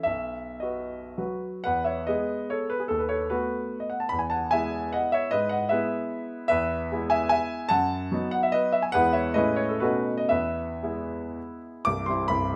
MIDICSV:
0, 0, Header, 1, 2, 480
1, 0, Start_track
1, 0, Key_signature, 4, "major"
1, 0, Tempo, 558140
1, 52, Time_signature, 3, 2, 24, 8
1, 1014, Tempo, 485830
1, 1494, Tempo, 432588
1, 2454, Tempo, 394997
1, 4374, Tempo, 419580
1, 5334, Tempo, 394737
1, 8694, Tempo, 413508
1, 10614, Tempo, 475436
1, 11574, Tempo, 515464
1, 13014, Tempo, 448766
1, 13757, End_track
2, 0, Start_track
2, 0, Title_t, "Grand piano"
2, 0, Program_c, 0, 0
2, 29, Note_on_c, 0, 76, 67
2, 52, Note_on_c, 0, 35, 41
2, 281, Control_c, 0, 64, 127
2, 516, Note_on_c, 0, 75, 49
2, 518, Note_off_c, 0, 35, 0
2, 521, Note_off_c, 0, 76, 0
2, 536, Note_on_c, 0, 66, 32
2, 537, Note_on_c, 0, 71, 36
2, 981, Note_off_c, 0, 66, 0
2, 982, Note_off_c, 0, 71, 0
2, 1006, Note_off_c, 0, 75, 0
2, 1013, Note_on_c, 0, 66, 29
2, 1014, Note_on_c, 0, 54, 31
2, 1017, Note_on_c, 0, 71, 33
2, 1030, Control_c, 0, 64, 0
2, 1454, Note_off_c, 0, 66, 0
2, 1455, Note_off_c, 0, 54, 0
2, 1456, Note_off_c, 0, 71, 0
2, 1466, Note_on_c, 0, 78, 78
2, 1480, Note_on_c, 0, 71, 57
2, 1492, Note_on_c, 0, 40, 43
2, 1693, Note_on_c, 0, 76, 49
2, 1702, Note_off_c, 0, 71, 0
2, 1708, Note_on_c, 0, 73, 42
2, 1711, Note_off_c, 0, 78, 0
2, 1723, Control_c, 0, 64, 127
2, 1940, Note_on_c, 0, 75, 67
2, 1946, Note_off_c, 0, 73, 0
2, 1950, Note_on_c, 0, 71, 52
2, 1956, Note_off_c, 0, 76, 0
2, 1956, Note_on_c, 0, 56, 33
2, 1958, Note_off_c, 0, 40, 0
2, 1961, Note_on_c, 0, 68, 37
2, 1963, Note_on_c, 0, 59, 33
2, 1984, Control_c, 0, 64, 0
2, 2409, Note_off_c, 0, 71, 0
2, 2420, Note_on_c, 0, 73, 61
2, 2434, Note_on_c, 0, 69, 45
2, 2438, Note_off_c, 0, 75, 0
2, 2656, Note_on_c, 0, 71, 62
2, 2669, Note_off_c, 0, 69, 0
2, 2679, Note_off_c, 0, 73, 0
2, 2761, Note_off_c, 0, 68, 0
2, 2779, Note_on_c, 0, 68, 44
2, 2796, Note_off_c, 0, 71, 0
2, 2876, Note_off_c, 0, 56, 0
2, 2880, Note_off_c, 0, 59, 0
2, 2881, Note_on_c, 0, 69, 64
2, 2909, Note_on_c, 0, 39, 42
2, 2915, Note_off_c, 0, 68, 0
2, 3010, Note_on_c, 0, 71, 47
2, 3026, Note_off_c, 0, 69, 0
2, 3131, Note_on_c, 0, 73, 62
2, 3146, Note_on_c, 0, 69, 45
2, 3152, Note_off_c, 0, 71, 0
2, 3169, Control_c, 0, 64, 127
2, 3387, Note_on_c, 0, 71, 62
2, 3392, Note_off_c, 0, 69, 0
2, 3394, Note_on_c, 0, 66, 46
2, 3396, Note_off_c, 0, 39, 0
2, 3403, Note_off_c, 0, 73, 0
2, 3413, Note_on_c, 0, 57, 34
2, 3414, Note_on_c, 0, 59, 35
2, 3436, Control_c, 0, 64, 0
2, 3963, Note_off_c, 0, 66, 0
2, 3997, Note_on_c, 0, 75, 46
2, 4003, Note_off_c, 0, 71, 0
2, 4114, Note_on_c, 0, 78, 51
2, 4126, Note_off_c, 0, 75, 0
2, 4241, Note_on_c, 0, 81, 47
2, 4244, Note_off_c, 0, 78, 0
2, 4321, Note_off_c, 0, 57, 0
2, 4321, Note_off_c, 0, 59, 0
2, 4351, Note_on_c, 0, 83, 78
2, 4367, Note_off_c, 0, 81, 0
2, 4384, Note_on_c, 0, 40, 46
2, 4464, Note_on_c, 0, 80, 52
2, 4477, Note_off_c, 0, 83, 0
2, 4576, Control_c, 0, 64, 127
2, 4588, Note_on_c, 0, 81, 64
2, 4593, Note_off_c, 0, 80, 0
2, 4603, Note_on_c, 0, 78, 54
2, 4829, Note_on_c, 0, 80, 78
2, 4832, Note_off_c, 0, 78, 0
2, 4841, Note_off_c, 0, 40, 0
2, 4841, Note_off_c, 0, 81, 0
2, 4844, Note_on_c, 0, 76, 62
2, 4855, Note_on_c, 0, 56, 35
2, 4856, Note_on_c, 0, 59, 34
2, 4863, Note_on_c, 0, 64, 38
2, 5297, Note_off_c, 0, 76, 0
2, 5307, Note_on_c, 0, 78, 73
2, 5321, Note_on_c, 0, 75, 56
2, 5323, Note_off_c, 0, 80, 0
2, 5349, Control_c, 0, 64, 0
2, 5544, Note_on_c, 0, 76, 70
2, 5547, Note_off_c, 0, 75, 0
2, 5556, Note_off_c, 0, 78, 0
2, 5564, Note_on_c, 0, 73, 59
2, 5750, Note_off_c, 0, 56, 0
2, 5750, Note_off_c, 0, 59, 0
2, 5754, Note_off_c, 0, 64, 0
2, 5771, Note_on_c, 0, 75, 85
2, 5777, Note_off_c, 0, 73, 0
2, 5782, Note_on_c, 0, 71, 66
2, 5783, Note_off_c, 0, 76, 0
2, 5801, Note_on_c, 0, 44, 50
2, 5992, Note_off_c, 0, 75, 0
2, 5997, Note_on_c, 0, 78, 73
2, 6003, Note_off_c, 0, 71, 0
2, 6010, Note_on_c, 0, 75, 55
2, 6019, Control_c, 0, 64, 127
2, 6236, Note_on_c, 0, 76, 71
2, 6249, Note_off_c, 0, 75, 0
2, 6255, Note_on_c, 0, 71, 57
2, 6260, Note_off_c, 0, 78, 0
2, 6263, Note_off_c, 0, 44, 0
2, 6266, Note_on_c, 0, 56, 40
2, 6269, Note_on_c, 0, 59, 41
2, 6273, Note_on_c, 0, 64, 43
2, 6289, Control_c, 0, 64, 0
2, 7178, Note_off_c, 0, 76, 0
2, 7183, Note_off_c, 0, 71, 0
2, 7189, Note_off_c, 0, 56, 0
2, 7191, Note_off_c, 0, 59, 0
2, 7193, Note_off_c, 0, 64, 0
2, 7196, Note_on_c, 0, 76, 88
2, 7213, Note_on_c, 0, 71, 67
2, 7233, Note_on_c, 0, 40, 53
2, 7487, Control_c, 0, 64, 127
2, 7702, Note_off_c, 0, 40, 0
2, 7729, Note_on_c, 0, 56, 46
2, 7741, Note_on_c, 0, 59, 43
2, 7745, Note_on_c, 0, 64, 48
2, 7910, Note_off_c, 0, 71, 0
2, 7940, Note_off_c, 0, 76, 0
2, 7947, Note_on_c, 0, 80, 76
2, 7958, Note_on_c, 0, 76, 69
2, 8167, Note_off_c, 0, 80, 0
2, 8185, Note_on_c, 0, 80, 88
2, 8192, Note_off_c, 0, 76, 0
2, 8213, Note_on_c, 0, 76, 64
2, 8228, Control_c, 0, 64, 0
2, 8650, Note_off_c, 0, 56, 0
2, 8656, Note_off_c, 0, 59, 0
2, 8658, Note_off_c, 0, 64, 0
2, 8659, Note_off_c, 0, 76, 0
2, 8662, Note_on_c, 0, 81, 99
2, 8677, Note_on_c, 0, 78, 73
2, 8678, Note_off_c, 0, 80, 0
2, 8688, Note_on_c, 0, 42, 57
2, 8914, Control_c, 0, 64, 127
2, 9153, Note_off_c, 0, 42, 0
2, 9163, Note_on_c, 0, 54, 48
2, 9165, Note_on_c, 0, 59, 47
2, 9180, Note_on_c, 0, 63, 46
2, 9187, Control_c, 0, 64, 0
2, 9363, Note_off_c, 0, 78, 0
2, 9392, Note_on_c, 0, 78, 76
2, 9402, Note_off_c, 0, 81, 0
2, 9525, Note_off_c, 0, 78, 0
2, 9526, Note_on_c, 0, 76, 65
2, 9633, Note_on_c, 0, 75, 86
2, 9651, Note_off_c, 0, 76, 0
2, 9652, Note_on_c, 0, 71, 60
2, 9869, Note_on_c, 0, 76, 69
2, 9872, Note_off_c, 0, 71, 0
2, 9879, Note_off_c, 0, 75, 0
2, 9985, Note_on_c, 0, 80, 57
2, 9996, Note_off_c, 0, 76, 0
2, 10070, Note_off_c, 0, 54, 0
2, 10071, Note_off_c, 0, 59, 0
2, 10079, Note_off_c, 0, 63, 0
2, 10098, Note_on_c, 0, 78, 105
2, 10110, Note_off_c, 0, 80, 0
2, 10118, Note_on_c, 0, 71, 80
2, 10123, Note_on_c, 0, 56, 45
2, 10128, Note_on_c, 0, 40, 56
2, 10134, Note_on_c, 0, 59, 42
2, 10138, Note_on_c, 0, 64, 41
2, 10336, Note_on_c, 0, 76, 62
2, 10337, Control_c, 0, 64, 127
2, 10338, Note_off_c, 0, 71, 0
2, 10345, Note_off_c, 0, 78, 0
2, 10346, Note_on_c, 0, 73, 51
2, 10570, Note_off_c, 0, 56, 0
2, 10575, Note_off_c, 0, 59, 0
2, 10577, Note_off_c, 0, 64, 0
2, 10585, Note_on_c, 0, 75, 83
2, 10591, Note_off_c, 0, 73, 0
2, 10600, Note_on_c, 0, 71, 69
2, 10604, Note_off_c, 0, 40, 0
2, 10605, Note_off_c, 0, 76, 0
2, 10605, Note_on_c, 0, 45, 53
2, 10605, Note_on_c, 0, 56, 38
2, 10613, Note_on_c, 0, 61, 43
2, 10620, Note_on_c, 0, 64, 43
2, 10630, Control_c, 0, 64, 0
2, 10812, Note_on_c, 0, 73, 69
2, 10827, Note_off_c, 0, 71, 0
2, 10836, Control_c, 0, 64, 127
2, 10838, Note_off_c, 0, 75, 0
2, 10941, Note_on_c, 0, 69, 51
2, 10950, Note_off_c, 0, 73, 0
2, 11042, Note_off_c, 0, 56, 0
2, 11046, Note_off_c, 0, 61, 0
2, 11049, Note_off_c, 0, 64, 0
2, 11053, Note_on_c, 0, 71, 66
2, 11068, Note_on_c, 0, 66, 55
2, 11069, Note_off_c, 0, 45, 0
2, 11071, Note_on_c, 0, 47, 48
2, 11073, Note_off_c, 0, 69, 0
2, 11080, Note_on_c, 0, 57, 34
2, 11080, Note_on_c, 0, 61, 37
2, 11091, Note_on_c, 0, 63, 33
2, 11101, Control_c, 0, 64, 0
2, 11321, Control_c, 0, 64, 127
2, 11415, Note_off_c, 0, 66, 0
2, 11431, Note_on_c, 0, 75, 63
2, 11434, Note_off_c, 0, 71, 0
2, 11531, Note_off_c, 0, 57, 0
2, 11531, Note_off_c, 0, 61, 0
2, 11537, Note_off_c, 0, 63, 0
2, 11545, Note_on_c, 0, 76, 72
2, 11552, Note_off_c, 0, 47, 0
2, 11559, Note_on_c, 0, 71, 52
2, 11564, Note_on_c, 0, 40, 49
2, 11565, Note_off_c, 0, 75, 0
2, 11587, Control_c, 0, 64, 0
2, 11796, Control_c, 0, 64, 127
2, 12039, Note_off_c, 0, 40, 0
2, 12051, Note_on_c, 0, 56, 35
2, 12051, Note_on_c, 0, 59, 34
2, 12058, Note_on_c, 0, 64, 40
2, 12564, Control_c, 0, 64, 0
2, 12746, Note_off_c, 0, 71, 0
2, 12776, Note_off_c, 0, 76, 0
2, 12973, Note_off_c, 0, 59, 0
2, 12974, Note_off_c, 0, 56, 0
2, 12977, Note_off_c, 0, 64, 0
2, 13000, Note_on_c, 0, 86, 96
2, 13016, Note_on_c, 0, 36, 52
2, 13017, Note_on_c, 0, 24, 43
2, 13225, Note_on_c, 0, 84, 68
2, 13238, Control_c, 0, 64, 127
2, 13244, Note_on_c, 0, 55, 36
2, 13245, Note_off_c, 0, 86, 0
2, 13247, Note_off_c, 0, 24, 0
2, 13247, Note_off_c, 0, 36, 0
2, 13251, Note_on_c, 0, 60, 38
2, 13262, Note_on_c, 0, 64, 41
2, 13459, Note_on_c, 0, 83, 89
2, 13467, Note_off_c, 0, 55, 0
2, 13471, Note_off_c, 0, 60, 0
2, 13477, Note_off_c, 0, 64, 0
2, 13480, Note_on_c, 0, 36, 49
2, 13482, Note_off_c, 0, 84, 0
2, 13486, Note_on_c, 0, 24, 47
2, 13720, Note_off_c, 0, 36, 0
2, 13723, Note_off_c, 0, 24, 0
2, 13757, Note_off_c, 0, 83, 0
2, 13757, End_track
0, 0, End_of_file